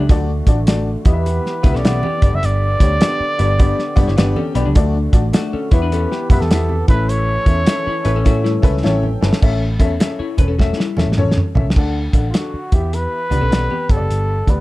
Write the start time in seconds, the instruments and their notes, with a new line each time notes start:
Already playing: tonewheel organ D3
0.00 hollow-body jazz guitar F#3 D4
0.09 picked electric bass D2, upright piano D3 A3 D4 F#4 D5, tonewheel organ A3 F#4, kick, closed hi-hat, muted conga
0.47 picked electric bass A1, upright piano A3 D4 F#4 D5, kick, closed hi-hat, muted conga
0.67 upright piano A3 D4 F#4 D5, snare, closed hi-hat, high conga
1.05 picked electric bass E2, upright piano E3 B3 E4 G4 D#5, tonewheel organ E3 B3 G4, trumpet B4, kick, closed hi-hat
1.13 upright piano E5
1.26 closed hi-hat, muted conga
1.46 snare
1.63 picked electric bass C#2, upright piano B3 E4 G4 E5, hollow-body jazz guitar D4 B4, kick, closed hi-hat, muted conga, low conga
1.74 picked electric bass B1, hollow-body jazz guitar C#4 A4, trumpet D5, snare
1.84 picked electric bass B1, upright piano B3 E4 G4 F#5, snare, closed hi-hat, high conga
2.03 hollow-body jazz guitar B3 G4, high conga
2.22 picked electric bass G1, upright piano G2 B3 D4 G4 D5, tonewheel organ D3, kick, closed hi-hat
2.33 picked electric bass F#1, trumpet E5
2.43 picked electric bass G1, trumpet D5, closed hi-hat, muted conga
2.80 picked electric bass D2, upright piano B3 D4 G4 C#5, kick, closed hi-hat, muted conga
3.01 upright piano B3 D4 G4 D5, snare, closed hi-hat, high conga
3.20 muted picked electric bass stroke
3.38 picked electric bass G1, upright piano B3 D4 G4 D5, closed hi-hat
3.59 upright piano B3 D4 G4 D5, kick, closed hi-hat, muted conga
3.79 snare
3.96 picked electric bass G2, upright piano B3 D4 G4 D5, kick, closed hi-hat, muted conga, low conga
4.08 picked electric bass G1, hollow-body jazz guitar E4 C#5, snare
4.17 picked electric bass G1, upright piano B3 D4 G4 D5 F#5, hollow-body jazz guitar D4 B4, snare, closed hi-hat, high conga
4.36 hollow-body jazz guitar C#4 A4, upright piano G5, high conga
4.54 picked electric bass B1, upright piano B3 D4 G4 D5 B5, hollow-body jazz guitar B3 G4, closed hi-hat
4.65 picked electric bass C#2, hollow-body jazz guitar F#3 D4
4.75 picked electric bass D2, upright piano D3 A3 D4 F#4 D5, tonewheel organ D3 A3 F#4, kick, closed hi-hat, muted conga
5.12 picked electric bass A1, upright piano A3 D4 F#4 D5, kick, closed hi-hat, muted conga
5.33 upright piano A3 D4 F#4 D5, hollow-body jazz guitar A3 F#4, snare, closed hi-hat, high conga
5.53 hollow-body jazz guitar C#4 A4, muted picked electric bass stroke
5.71 picked electric bass E2, tonewheel organ E3 B3 G4, upright piano E3 B3 E4 G4 E5, hollow-body jazz guitar E4 C#5, trumpet B4, kick, closed hi-hat
5.82 hollow-body jazz guitar D4 B4
5.92 hollow-body jazz guitar C#4 A4, closed hi-hat, muted conga
6.12 hollow-body jazz guitar B3 G4, snare
6.30 picked electric bass F#2, upright piano B3 E4 G4 E5, trumpet B4, kick, closed hi-hat, muted conga, low conga
6.41 picked electric bass E2, trumpet A4, snare
6.51 picked electric bass E2, upright piano B3 E4 G4 E5, snare, closed hi-hat, high conga
6.69 high conga
6.88 picked electric bass A1, upright piano A2 C#4 E4 A4 E5, tonewheel organ C#4 A4, trumpet B4, kick, closed hi-hat
7.09 trumpet C#5, closed hi-hat
7.46 picked electric bass E2, upright piano C#4 E4 A4 E5, kick, closed hi-hat, muted conga
7.66 upright piano C#4 E4 A4 E5, snare, closed hi-hat, high conga
7.87 hollow-body jazz guitar E4 C#5, muted picked electric bass stroke
8.04 picked electric bass A1, upright piano C#4 E4 A4 B4, hollow-body jazz guitar B4, closed hi-hat
8.16 hollow-body jazz guitar C#4 A4
8.24 picked electric bass A2, hollow-body jazz guitar A3 F#4, upright piano C#4 E4 A4 E5, kick, closed hi-hat, muted conga
8.44 hollow-body jazz guitar G3 E4, snare
8.62 picked electric bass C#2, upright piano C#4 E4 A4 B4 E5, kick, closed hi-hat, muted conga, low conga
8.83 picked electric bass A1, upright piano C#4 E4 A4 C#5 G5, snare, high conga
9.03 high conga
9.21 picked electric bass G1, upright piano C#4 E4 A4 B4 A5, snare
9.33 snare
9.42 picked electric bass A1, upright piano A2 C#4 A4 E5, kick, crash, muted conga
9.79 picked electric bass E2, upright piano C#4 A4 E5, kick, closed hi-hat, muted conga
10.00 upright piano C#4 A4 E5, snare, closed hi-hat, high conga
10.19 hollow-body jazz guitar E4 C#5, muted picked electric bass stroke
10.37 picked electric bass E1, upright piano C#4 A4 B4, hollow-body jazz guitar B4, kick, closed hi-hat, low conga
10.48 hollow-body jazz guitar C#4 A4
10.58 hollow-body jazz guitar A3 F#4, upright piano C#4 A4 E5, kick, snare, muted conga
10.73 snare
10.77 hollow-body jazz guitar G3 E4, snare
10.97 picked electric bass E2, upright piano C#4 A4 E5, snare, muted conga, low conga
11.08 picked electric bass A1
11.12 snare
11.17 picked electric bass A1, upright piano C#4 A4 C#5, mid tom, high conga
11.31 snare
11.36 mid tom, high conga
11.55 picked electric bass B1, upright piano C#4 A4 E5, floor tom
11.57 floor tom
11.66 picked electric bass C#2
11.70 snare
11.76 picked electric bass D2, upright piano D3 D4 A4 F#5, kick, crash
12.13 picked electric bass A1, upright piano D4 A4 F#5, kick, closed hi-hat, muted conga
12.30 trumpet F4
12.34 upright piano D4 A4 F#5, trumpet F#4, snare, closed hi-hat, high conga
12.54 muted picked electric bass stroke
12.72 picked electric bass E2, upright piano E3 B3 G4 E5, trumpet G4, kick, closed hi-hat
12.93 trumpet B4, closed hi-hat, muted conga
13.30 picked electric bass C#2, upright piano B3 G4 D5, hollow-body jazz guitar D4 B4, closed hi-hat, muted conga, low conga
13.41 picked electric bass B1, hollow-body jazz guitar C#4 A4
13.51 upright piano B3 G4 D5, snare, closed hi-hat, high conga
13.70 hollow-body jazz guitar B3 G4, high conga
13.89 picked electric bass G1, upright piano G2 B3 G4 C#5, trumpet A4, kick, closed hi-hat
13.96 picked electric bass F#1, upright piano D5
14.10 picked electric bass G1, closed hi-hat
14.47 picked electric bass D2, upright piano B3 G4 D5, trumpet B4, kick, closed hi-hat, muted conga